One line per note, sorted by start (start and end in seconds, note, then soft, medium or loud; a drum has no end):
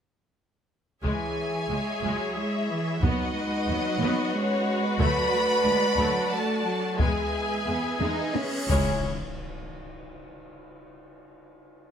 1.03 1.11 C#2 soft
1.03 1.66 E3 soft
1.03 1.35 G#3 medium
1.03 2.98 E4 soft
1.03 2.32 G#4 medium
1.03 2.98 G#4 soft
1.03 2.99 G#4 soft
1.03 2.98 C#5 soft
1.03 2.98 E5 soft
1.03 2.99 E5 soft
1.03 2.33 G#5 soft
1.03 taiko soft
1.68 1.76 C#2 soft
1.68 2.03 G#3 soft
1.68 1.79 G#3 soft
2.02 2.10 C#2 soft
2.02 2.36 F#3 soft
2.02 2.34 G#3 soft
2.02 taiko soft
2.36 2.69 G#3 soft
2.36 3.02 E4 medium
2.36 3.01 E5 soft
2.69 3.02 E3 soft
3.00 3.09 D#2 medium
3.00 3.34 F#3 soft
3.00 3.34 B3 medium
3.00 4.31 D#4 medium
3.00 5.00 D#4 medium
3.00 6.99 F#4 medium
3.00 7.01 F#4 medium
3.00 5.00 B4 medium
3.00 4.97 B4 soft
3.00 4.35 D#5 medium
3.00 7.00 F#5 medium
3.00 6.96 F#5 soft
3.00 taiko medium
3.33 3.67 G#3 medium
3.67 3.75 D#2 soft
3.67 4.34 F#3 medium
3.67 3.77 B3 soft
3.98 4.06 D#2 medium
3.98 4.32 B3 medium
4.33 4.99 G#3 medium
4.33 4.85 C#4 medium
4.33 4.84 C#5 medium
4.83 5.01 B3 medium
4.83 5.00 B4 medium
4.99 5.07 D2 medium
4.99 5.33 F#3 medium
4.99 5.31 A3 medium
4.99 7.00 D4 medium
4.99 6.33 B4 loud
4.99 6.96 D5 medium
4.99 7.00 A5 medium
4.99 6.30 B5 medium
4.99 taiko medium
5.33 5.67 A3 medium
5.65 5.73 D2 soft
5.65 5.76 F#3 soft
5.65 5.99 G#3 medium
5.96 6.04 D2 medium
5.96 6.32 F#3 medium
6.00 6.31 A3 medium
6.33 6.66 A3 medium
6.33 7.00 A4 medium
6.33 7.00 A5 medium
6.65 6.99 F#3 soft
6.98 7.06 E2 medium
6.98 8.70 E3 medium
6.98 7.31 G#3 medium
6.98 7.61 G#3 soft
6.98 8.70 B3 medium
6.98 8.66 G#4 medium
6.98 8.33 G#4 medium
6.98 8.69 G#4 medium
6.98 8.67 B4 soft
6.98 8.70 E5 soft
6.98 8.34 G#5 medium
6.98 8.69 G#5 medium
6.98 taiko medium
6.98 cymbal swell soft
7.66 7.74 E2 soft
7.66 7.74 G#3 soft
7.66 7.99 B3 soft
8.00 8.08 E2 medium
8.00 8.33 G#3 soft
8.00 8.35 D#4 medium
8.00 taiko high medium
8.35 8.70 C#4 soft
8.35 taiko high medium
8.68 9.08 C#2 medium
8.68 9.08 G#3 medium
8.68 9.08 C#4 medium
8.68 9.01 C#4 medium
8.68 9.08 E4 medium
8.68 9.01 E4 medium
8.68 9.08 G#4 medium
8.68 9.01 G#4 medium
8.68 9.08 C#5 medium
8.68 9.00 C#5 medium
8.68 9.01 G#5 medium
8.68 taiko medium
8.68 impact medium